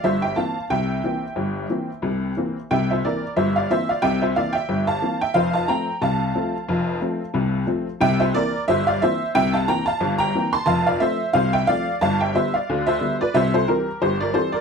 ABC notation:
X:1
M:2/4
L:1/16
Q:"Swing 16ths" 1/4=90
K:Cmix
V:1 name="Honky-tonk piano"
[ce] [eg] [fa]2 [eg]4- | [eg]8 | [eg] [ce] [Bd]2 [ce] [df] [ce] [df] | [eg] [ce] [df] [eg]2 [fa]2 [eg] |
[cf] [fa] [gb]2 [fa]4- | [fa]8 | [eg] [ce] [Bd]2 [ce] [df] [ce]2 | [eg] [fa] [gb] [fa]2 [gb]2 [ac'] |
[fa] [df] [ce]2 [cf] [eg] [df]2 | [fa] [eg] [ce] [df]2 [ce]2 [=Bd] | [ce] [Ac] [GB]2 [Gc] [Bd] [Ac] [Bd] |]
V:2 name="Honky-tonk piano" clef=bass
[G,,,G,,]2 [E,B,C]2 [C,,C,]2 [E,B,C]2 | [G,,,G,,]2 [E,B,C]2 [C,,C,]2 [E,B,C]2 | [C,,C,]2 [E,B,C]2 [G,,,G,,]2 [E,B,C]2 | [C,,C,]2 [E,B,C]2 [G,,,G,,]2 [E,B,C]2 |
[F,,,F,,]2 [F,A,C]2 [C,,C,]2 [F,A,C]2 | [F,,,F,,]2 [F,A,C]2 [C,,C,]2 [F,A,C]2 | [C,,C,]2 [E,B,C]2 [G,,,G,,]2 [E,B,C]2 | [C,,C,]2 [E,B,C]2 [G,,,G,,]2 [E,B,C]2 |
[F,,,F,,]2 [F,A,C]2 [C,,C,]2 [F,A,C]2 | [G,,,G,,]2 [D,G,=B,]2 [D,,D,]2 [D,G,B,]2 | [C,,C,]2 [E,G,C]2 [G,,,G,,]2 [E,G,C]2 |]